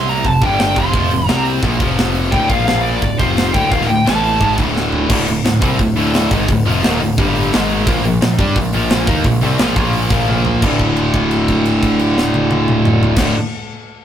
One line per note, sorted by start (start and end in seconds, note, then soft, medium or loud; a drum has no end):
0.00 0.22 C2 medium
0.00 0.24 C3 loud
0.00 0.25 G3 medium
0.00 0.25 C4 loud
0.08 0.26 A#5 loud
0.08 open hi-hat medium
0.24 0.41 F1 medium
0.24 0.39 F2 medium
0.24 0.39 C3 medium
0.24 0.44 A5 loud
0.24 kick medium
0.24 open hi-hat medium
0.41 0.74 G1 loud
0.41 0.75 G2 medium
0.41 0.76 D3 medium
0.41 0.77 G3 loud
0.41 0.60 G5 medium
0.41 kick loud
0.41 open hi-hat medium
0.59 0.78 G5 medium
0.59 snare loud
0.59 open hi-hat medium
0.76 0.93 F1 loud
0.76 0.92 F2 medium
0.76 0.93 C3 loud
0.76 0.94 F3 loud
0.76 1.26 C6 loud
0.76 kick loud
0.76 open hi-hat medium
0.93 1.10 F1 loud
0.93 1.11 F2 loud
0.93 1.11 C3 loud
0.93 1.11 F3 loud
0.93 kick loud
0.93 open hi-hat medium
1.11 1.28 F1 medium
1.11 1.26 F2 medium
1.11 1.26 C3 medium
1.11 open hi-hat medium
1.26 1.61 C2 medium
1.26 1.62 C3 medium
1.26 1.63 G3 loud
1.26 1.63 C4 loud
1.26 1.43 A#5 loud
1.26 snare loud
1.26 open hi-hat medium
1.45 open hi-hat medium
1.62 1.79 A#1 loud
1.62 1.80 A#2 loud
1.62 1.80 F3 loud
1.62 1.80 A#3 loud
1.62 kick loud
1.62 open hi-hat medium
1.80 2.29 F1 loud
1.80 2.31 F2 loud
1.80 2.32 C3 loud
1.80 2.33 F3 loud
1.80 kick loud
1.80 open hi-hat medium
1.98 snare loud
1.98 open hi-hat medium
2.15 open hi-hat medium
2.32 2.49 D1 medium
2.32 2.49 D2 loud
2.32 2.49 A2 loud
2.32 2.50 D3 loud
2.32 2.50 G5 medium
2.32 kick loud
2.32 open hi-hat medium
2.49 2.98 A#1 medium
2.49 3.02 A#2 medium
2.49 3.02 F3 loud
2.49 3.02 A#3 loud
2.49 2.64 F5 medium
2.49 kick loud
2.49 open hi-hat medium
2.65 2.81 F5 medium
2.65 snare loud
2.65 open hi-hat medium
2.82 3.18 D5 medium
2.82 open hi-hat medium
3.02 3.18 D1 medium
3.02 3.16 D2 medium
3.02 3.17 A2 medium
3.02 kick loud
3.02 open hi-hat medium
3.19 3.52 F1 loud
3.19 3.53 F2 loud
3.19 3.54 C3 loud
3.19 3.54 F3 loud
3.19 3.55 C5 loud
3.19 kick loud
3.19 open hi-hat medium
3.37 snare loud
3.37 open hi-hat medium
3.53 3.70 D1 medium
3.53 3.70 D2 loud
3.53 3.71 A2 loud
3.53 3.71 D3 loud
3.53 3.71 G5 loud
3.53 kick loud
3.53 open hi-hat medium
3.71 3.88 D#1 loud
3.71 3.88 D#2 loud
3.71 3.89 A#2 loud
3.71 3.89 D#3 loud
3.71 3.87 F5 loud
3.71 kick loud
3.71 open hi-hat medium
3.82 snare soft
3.87 4.05 D1 medium
3.87 4.06 D2 medium
3.87 4.06 A2 medium
3.87 4.04 G5 loud
3.87 open hi-hat medium
4.04 4.39 A1 medium
4.04 4.40 A2 loud
4.04 4.41 E3 loud
4.04 4.41 A3 loud
4.04 4.53 A5 loud
4.04 snare loud
4.04 open hi-hat medium
4.24 open hi-hat medium
4.41 4.57 G#1 loud
4.41 4.57 G#2 medium
4.41 4.58 D#3 loud
4.41 4.58 G#3 loud
4.41 kick loud
4.41 open hi-hat medium
4.58 5.06 D1 loud
4.58 5.07 D2 medium
4.58 5.08 A2 medium
4.58 5.08 D3 loud
4.58 kick loud
4.58 open hi-hat medium
4.76 snare medium
4.92 floor tom medium
5.08 5.26 D1 loud
5.08 5.25 D2 medium
5.08 5.26 A2 loud
5.08 5.27 D3 loud
5.08 kick loud
5.08 crash loud
5.27 5.44 D1 medium
5.27 5.41 D2 medium
5.27 5.41 A2 medium
5.27 open hi-hat medium
5.44 5.61 D1 medium
5.44 5.58 D2 medium
5.44 5.58 A2 medium
5.44 snare loud
5.44 open hi-hat medium
5.61 5.78 C2 loud
5.61 5.78 C3 loud
5.61 5.78 G3 medium
5.61 5.79 C4 loud
5.61 kick loud
5.61 open hi-hat medium
5.79 5.95 D1 medium
5.79 5.93 D2 medium
5.79 5.93 A2 medium
5.79 kick medium
5.79 open hi-hat medium
5.96 6.29 D1 loud
5.96 6.30 D2 medium
5.96 6.31 A2 loud
5.96 6.31 D3 medium
5.96 open hi-hat medium
6.14 snare loud
6.14 open hi-hat loud
6.31 6.47 G#1 loud
6.31 6.48 G#2 loud
6.31 6.48 D#3 loud
6.31 6.48 G#3 loud
6.31 kick loud
6.31 open hi-hat medium
6.48 6.65 D1 medium
6.48 6.63 D2 medium
6.48 6.63 A2 medium
6.48 kick loud
6.48 open hi-hat loud
6.65 6.82 F1 loud
6.65 6.82 F2 loud
6.65 6.83 C3 loud
6.65 6.83 F3 loud
6.65 open hi-hat medium
6.83 7.00 D#1 medium
6.83 7.00 D#2 medium
6.83 7.00 A#2 loud
6.83 7.01 D#3 loud
6.83 snare loud
6.83 open hi-hat loud
7.00 7.17 D1 medium
7.00 7.14 D2 medium
7.00 7.14 A2 medium
7.00 open hi-hat medium
7.17 7.50 G1 loud
7.17 7.52 G2 loud
7.17 7.52 D3 loud
7.17 7.52 G3 loud
7.17 kick loud
7.17 open hi-hat medium
7.35 open hi-hat medium
7.53 7.85 G#1 loud
7.53 7.87 G#2 loud
7.53 7.87 D#3 loud
7.53 7.87 G#3 loud
7.53 snare loud
7.53 open hi-hat medium
7.70 open hi-hat medium
7.87 8.03 A#1 loud
7.87 8.04 A#2 loud
7.87 8.04 F3 loud
7.87 8.04 A#3 loud
7.87 kick loud
7.87 open hi-hat medium
8.04 8.20 A#1 medium
8.04 8.18 A#2 medium
8.04 8.19 F3 medium
8.04 open hi-hat medium
8.21 8.38 A#1 medium
8.21 8.36 A#2 medium
8.21 8.36 F3 medium
8.21 snare loud
8.21 open hi-hat medium
8.39 8.55 G2 loud
8.39 8.56 G3 medium
8.39 8.56 D4 loud
8.39 8.56 G4 loud
8.39 kick loud
8.39 open hi-hat medium
8.56 8.72 A#1 medium
8.56 8.70 A#2 medium
8.56 8.70 F3 medium
8.56 kick medium
8.56 open hi-hat medium
8.73 9.05 A#1 loud
8.73 9.08 A#2 medium
8.73 9.08 F3 loud
8.73 9.07 A#3 loud
8.73 open hi-hat medium
8.90 snare loud
8.90 open hi-hat medium
9.07 9.24 D#2 loud
9.07 9.25 D#3 medium
9.07 9.25 A#3 loud
9.07 9.25 D#4 loud
9.07 kick loud
9.07 open hi-hat medium
9.24 9.41 A#1 medium
9.24 9.39 A#2 medium
9.24 9.39 F3 medium
9.24 kick loud
9.24 open hi-hat medium
9.41 9.58 C2 loud
9.41 9.58 C3 loud
9.41 9.59 G3 loud
9.41 9.59 C4 loud
9.41 open hi-hat medium
9.58 9.75 A#1 medium
9.58 9.75 A#2 medium
9.58 9.75 F3 loud
9.58 9.76 A#3 loud
9.58 snare loud
9.58 open hi-hat medium
9.76 10.08 A#1 loud
9.76 10.10 A#2 medium
9.76 10.10 F3 loud
9.76 10.11 A#3 loud
9.76 kick loud
9.76 open hi-hat medium
9.93 open hi-hat medium
10.10 10.27 A#1 loud
10.10 10.27 A#2 medium
10.10 10.28 F3 medium
10.10 10.28 A#3 loud
10.10 kick loud
10.10 open hi-hat medium
10.28 10.60 A#1 loud
10.28 10.61 A#2 medium
10.28 10.63 F3 loud
10.28 10.63 A#3 loud
10.28 high tom medium
10.45 floor tom loud
10.62 13.09 D1 loud
10.62 13.16 D2 loud
10.62 13.18 A2 loud
10.62 kick loud
10.62 crash medium
10.66 13.20 D3 loud
10.79 kick medium
10.79 crash soft
10.97 crash soft
11.14 kick medium
11.14 crash medium
11.31 crash soft
11.48 kick medium
11.48 crash medium
11.65 crash medium
11.83 kick medium
11.83 crash medium
11.99 crash medium
12.18 snare loud
12.34 high tom loud
12.51 high tom loud
12.68 mid tom medium
12.85 mid tom loud
13.03 floor tom loud
13.16 13.31 D1 loud
13.16 13.32 D2 loud
13.16 13.33 A2 loud
13.16 kick loud
13.16 snare loud
13.16 crash loud
13.20 13.34 D3 loud